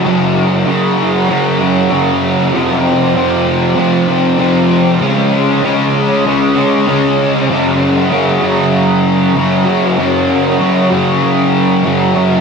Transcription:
X:1
M:4/4
L:1/8
Q:1/4=97
K:Gblyd
V:1 name="Distorted electric guitar" clef=bass
[G,,D,G,]2 [G,,D,G,]2 [G,,D,G,] [D,G,] [G,,D,G,]2 | [F,,C,F,]2 [F,,C,F,]2 [F,,C,F,] [C,F,] [F,,C,F,]2 | [D,A,D]2 [D,A,D]2 [D,A,D] [A,D] [D,A,D]2 | [G,,D,G,]2 [G,,D,G,] [D,G,]3 [G,,D,G,] [D,G,] |
[G,,D,G,]2 [G,,D,G,] [D,G,]3 [G,,D,G,] [D,G,] |]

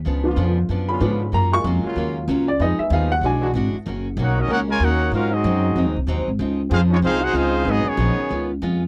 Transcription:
X:1
M:4/4
L:1/8
Q:"Swing" 1/4=189
K:Dbmix
V:1 name="Trumpet section"
z8 | z8 | z8 | z2 [EBdg] [DGBe] [EBdg] [FBda] [EBdg]2 |
[DGBf] [=CGAe]4 z3 | z2 [EA=cf] [A,EFd] [EAcf] [EAcg] [EAcf]2 | [CGAe] [CGAd]4 z3 |]
V:2 name="Upright piano"
z4 z c'3 | b d' z4 z =d | e _f =f g ^g2 z2 | z8 |
z8 | z8 | z8 |]
V:3 name="Upright piano"
z [F,C=D] z4 [F,CD] z | z [A,B,F]6- [A,B,F] | [A,CE]3 z [^F,^G,=D] z3 | z8 |
z8 | z8 | z8 |]
V:4 name="Trombone section"
z8 | z8 | z8 | z2 [B,DG] [G,B,E] [B,DG] A, [B,DG]2 |
F [G,=CE]4 z3 | z2 [A,=CF] [F,A,D] [A,CF] G [A,CF]2 | [G,CE] [E,G,D]4 z3 |]
V:5 name="Steel-string acoustic guitar"
[D,F,C=D] z [_D,F,C=D] z [_D,F,C=D] z [_D,F,C=D] z | [G,B,DF] z [G,B,DF] z [G,B,DF] z [G,B,DF] z | [F,CEA] z [F,CEA] z [=E,^G,=D^F] z [E,G,DF] z | [E,B,DG] z [E,B,DG] z [E,B,DG] z [E,B,DG] z |
[A,,G,=CE] z [A,,G,CE] z [A,,G,CE] z [A,,G,CE] z | [D,F,=CE] z [D,F,CE] z [D,F,CE] z [D,F,CE] z | [A,,G,CE] z [A,,G,CE] z [D,A,CF] z [D,A,CF] z |]
V:6 name="Trombone section"
z [=D,CF]3 z [D,C_DF]3 | z3 [D,G,B,F]3 z2 | z4 z [=E,^G,=D^F] z2 | z8 |
z8 | z8 | z8 |]
V:7 name="Upright bass" clef=bass
D,,2 F,,2 G,,2 A,,2 | G,,2 F,, z E,,2 D,,2 | F,, z E,,2 =B,,,2 ^G,,, z | G,,,2 C,,2 D,,2 E,,2 |
A,,2 G,,2 (3F,, E,, =C,, (3E,, C,, A,,, | D,,2 F,,2 =C,,2 D,,2 | A,,, z B,,, z D,,2 F,,2 |]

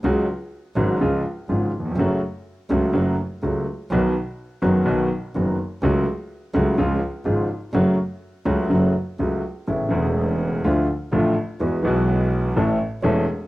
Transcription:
X:1
M:4/4
L:1/16
Q:1/4=125
K:F#m
V:1 name="Grand piano" clef=bass
[C,,C,F,G,F]2 z4 [G,,,G,,C,F,G,F]2 [C,,C,^E,G,^E]2 z2 [G,,,G,,C,E,G,E]2 z/2 ^D,,/2 =E,,/2 ^E,,/2 | [F,,C,F,A,F]2 z4 [C,,C,F,A,F]2 [F,,C,F,A,F]2 z2 [C,,C,F,A,F]2 z2 | [B,,,B,,^D,F,B,F]2 z4 [F,,,F,,D,F,B,F]2 [B,,,B,,D,F,B,F]2 z2 [F,,,F,,D,F,B,F]2 z2 | [C,,C,F,A,F]2 z4 [C,,C,F,A,F]2 [C,,C,^E,G,^E]2 z2 [G,,,G,,C,E,G,E]2 z2 |
[F,,C,F,A,F]2 z4 [C,,C,F,A,F]2 [F,,C,F,A,F]2 z2 [C,,C,F,A,F]2 z2 | [K:A] [A,,,A,,C,A,B,E]2 [E,,,E,,C,A,B,E]6 [D,,D,=F,A,=F]2 z2 [A,,,A,,D,F,A,F]2 z2 | [E,,E,G,B,F]2 [B,,,B,,E,G,B,F]6 [A,,,A,,E,A,CA]2 z2 [E,,,E,,E,A,CA]2 z2 |]
V:2 name="Double bass" clef=bass
C,,2 z4 G,,,2 C,,2 z2 G,,,2 z2 | F,,,2 z4 C,,2 F,,,2 z2 C,,2 z2 | B,,,2 z4 F,,,2 B,,,2 z2 F,,,2 z2 | C,,2 z4 C,,2 C,,2 z2 G,,,2 z2 |
F,,,2 z4 C,,2 F,,,2 z2 C,,2 z2 | [K:A] A,,,2 E,,,6 D,,2 z2 A,,,2 z2 | E,,2 B,,,6 A,,,2 z2 E,,,2 z2 |]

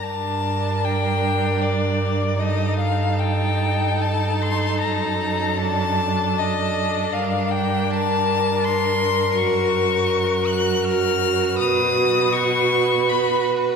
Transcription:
X:1
M:3/4
L:1/8
Q:1/4=77
K:Gm
V:1 name="Violin"
a2 g2 d2 | e f g2 a c' | b2 a2 e2 | f g a2 c'2 |
[K:F#] c'3 f' e'2 | d'2 c'2 b z |]
V:2 name="Violin"
B6 | A6- | A6 | B6- |
[K:F#] _B6 | B6 |]
V:3 name="Viola"
D6 | E6- | E2 D4- | D6 |
[K:F#] F6- | F6 |]
V:4 name="Cello" clef=bass
G,,6- | G,,6 | ^F,,6 | G,,6 |
[K:F#] F,,6 | B,,6 |]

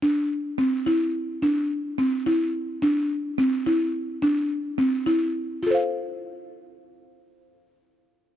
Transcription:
X:1
M:5/8
L:1/8
Q:1/4=107
K:Cmix
V:1 name="Marimba"
D2 C E2 | D2 C E2 | D2 C E2 | D2 C E2 |
[FAcf]4- [FAcf]- | [FAcf]4- [FAcf] |]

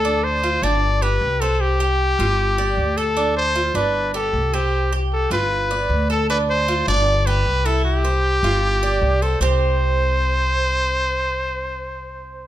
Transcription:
X:1
M:4/4
L:1/8
Q:1/4=154
K:Gmix
V:1 name="Trumpet"
A c2 d2 B2 A | G6- G A- | A c2 B2 A2 G- | G z A B4 A |
B c2 d2 B2 A | G6- G A | c8- | c8 |]
V:2 name="Cuban tres"
D2 F D2 G2 C- | C G2 F2 d2 A | D2 F D2 G2 C- | C G2 F2 d2 A |
D2 F D2 G2 E- | E c2 F2 d2 c | [CGc]8- | [CGc]8 |]
V:3 name="Upright bass" clef=bass
D,,3 G,,,3 C,,2- | C,,3 G,,,3 D,,2- | D,,3 G,,,3 C,,2- | C,,3 G,,,3 D,,2- |
D,,3 G,,,3 C,,2- | C,,3 G,,,3 C,,2 | C,,8- | C,,8 |]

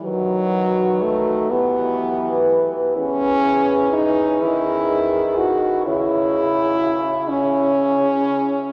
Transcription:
X:1
M:6/8
L:1/8
Q:3/8=41
K:Em
V:1 name="French horn"
B3 B3 | [K:Elyd] B3 B3 | c2 z c3 |]
V:2 name="French horn"
F3 G3 | [K:Elyd] G3 G3 | G2 z G3 |]
V:3 name="French horn"
F,2 A, B,2 z | [K:Elyd] C2 D E2 F | E3 C3 |]
V:4 name="French horn" clef=bass
^D,3 E,3 | [K:Elyd] E,3 D,3 | C,4- C, z |]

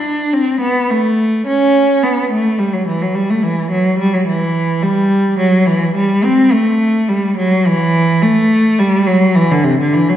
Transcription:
X:1
M:12/8
L:1/16
Q:3/8=71
K:Amix
V:1 name="Cello" clef=bass
D2 =C2 B,2 A,4 ^C4 B,2 A,2 G, F, E, F, G, A, | [K:Em] E,2 F,2 G, F, E,4 G,4 F,2 E,2 G,2 C2 A,2- | A,2 G,2 F,2 E,4 A,4 G,2 F,2 E, D, C, D, E, F, |]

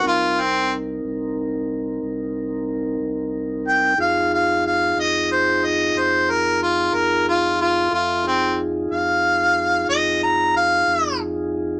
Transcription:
X:1
M:12/8
L:1/8
Q:3/8=61
K:Fdor
V:1 name="Harmonica"
F C z8 z g | f f f e c e c B F B F F | F C z f3 e b f2 z2 |]
V:2 name="Tonewheel organ"
[CEB]12 | [EFA]12 | [F=A=e] [_EF_A]8- [EFA]3 |]
V:3 name="Sub bass" clef=bass
C,,3 C,,3 C,,3 C,,3 | F,,3 F,,3 F,,3 F,,3 | F,,3 F,,3 F,,3 F,,3 |]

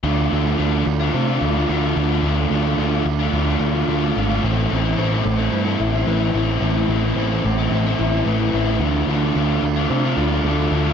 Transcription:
X:1
M:4/4
L:1/16
Q:1/4=110
K:Ddor
V:1 name="Twelve-string acoustic guitar"
D4 D2 D2 D2 F2 A2 F2 | D4 D2 D2 D2 F2 A2 F2 | A,4 C2 A,2 C2 E2 B2 E2 | A,4 C2 A,2 C2 E2 B2 E2 |
D4 D2 D2 D2 F2 A2 F2 |]
V:2 name="Overdriven electric guitar"
[D,A,DF]2 [D,A,DF]2 [D,A,DF] [A,DF]2 [A,DF]2 [A,DF]3 [D,A,DF] [A,DF] [D,A,DF] [A,DF] | [D,A,DF]2 [D,A,DF]2 [D,A,DF] [A,DF]2 [A,DF]2 [A,DF]3 [D,A,DF] [A,DF] [D,A,DF] [A,DF] | [A,,E,A,CE]2 [E,A,CE]2 [A,,E,A,CE] [A,CE]2 [A,CE]2 [A,CE]3 [A,,E,A,CE] [A,CE] [E,A,CE] [A,CE] | [A,,E,A,CE]2 [E,A,CE]2 [A,,E,A,CE] [A,CE]2 [A,CE]2 [A,CE]3 [A,,E,A,CE] [A,CE] [E,A,CE] [A,CE] |
[D,A,DF]2 [D,A,DF]2 [D,A,DF] [A,DF]2 [A,DF]2 [A,DF]3 [D,A,DF] [A,DF] [D,A,DF] [A,DF] |]
V:3 name="Overdriven electric guitar"
[D,A,DF]2 [D,A,DF] [A,DF] [D,A,DF]2 [D,A,DF] [A,DF] [D,A,DF] [A,DF]2 [A,DF] [D,A,DF]2 [D,A,DF] [A,DF] | [D,A,DF]2 [D,A,DF] [A,DF] [D,A,DF]2 [D,A,DF] [A,DF] [D,A,DF] [A,DF]2 [A,DF] [D,A,DF]2 [D,A,DF] [A,DF] | [A,,E,A,CE]2 [E,A,CE] [A,CE] [A,,E,A,CE]2 [E,A,CE] [A,CE] [E,A,CE] [A,CE]2 [A,CE] [A,,E,A,CE]2 [E,A,CE] [A,CE] | [A,,E,A,CE]2 [E,A,CE] [A,CE] [A,,E,A,CE]2 [E,A,CE] [A,CE] [E,A,CE] [A,CE]2 [A,CE] [A,,E,A,CE]2 [E,A,CE] [A,CE] |
[D,A,DF]2 [D,A,DF] [A,DF] [D,A,DF]2 [D,A,DF] [A,DF] [D,A,DF] [A,DF]2 [A,DF] [D,A,DF]2 [D,A,DF] [A,DF] |]
V:4 name="Picked electric bass" clef=bass
D,,2 D,,2 D,,2 D,,2 C,2 D,,2 D,,2 D,,2 | D,,2 D,,2 D,,2 D,,2 D,,2 D,,2 D,,2 _A,,,2 | A,,,2 A,,,2 A,,,2 A,,,2 G,,2 A,,,2 A,,,2 A,,,2 | A,,,2 A,,,2 A,,,2 A,,,2 A,,,2 A,,,2 A,,,2 A,,,2 |
D,,2 D,,2 D,,2 D,,2 C,2 D,,2 D,,2 D,,2 |]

